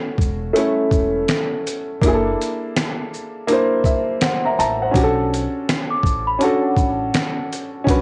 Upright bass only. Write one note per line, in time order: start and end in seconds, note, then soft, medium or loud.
0.18 0.50 E1 loud
0.92 1.23 E1 medium
2.02 2.33 F#1 loud
4.59 4.90 A1 medium
4.94 5.45 B1 loud
6.04 6.35 A1 medium
6.77 7.08 A1 medium
7.87 8.02 B1 loud